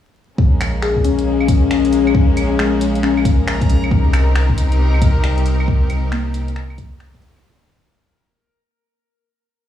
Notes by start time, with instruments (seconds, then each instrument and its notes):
0.38 sub bass A#1, string section G#3 A#3 C#4, synth texture A#4, kick
0.61 finger snap, closed hi-hat, claves
0.82 synth keys G#4, finger snap
0.97 kick
1.04 synth keys C#4, closed hi-hat
1.19 closed hi-hat
1.41 claves
1.48 kick, closed hi-hat
1.71 finger snap, closed hi-hat
1.85 closed hi-hat
1.93 closed hi-hat
2.07 claves
2.15 kick
2.37 closed hi-hat, claves
2.59 synth keys G#3, finger snap
2.81 closed hi-hat
2.95 closed hi-hat
3.03 synth keys C#4, finger snap
3.17 claves
3.25 kick, closed hi-hat
3.48 finger snap, closed hi-hat
3.61 kick, closed hi-hat
3.70 closed hi-hat
3.84 claves
3.91 sub bass C2, string section C3 C4 D#4 G4 A#4, kick
4.13 finger snap, closed hi-hat, claves
4.35 finger snap
4.50 kick
4.58 closed hi-hat
4.72 closed hi-hat
4.94 claves
5.02 kick, closed hi-hat
5.24 synth keys G3, finger snap, closed hi-hat
5.38 closed hi-hat
5.46 closed hi-hat
5.60 claves
5.68 kick
5.90 closed hi-hat, claves
6.12 synth keys A#3, finger snap
6.34 closed hi-hat
6.48 closed hi-hat
6.56 finger snap
6.70 claves
6.78 kick, closed hi-hat
7.00 finger snap, closed hi-hat
7.14 kick, closed hi-hat
7.22 closed hi-hat
7.36 claves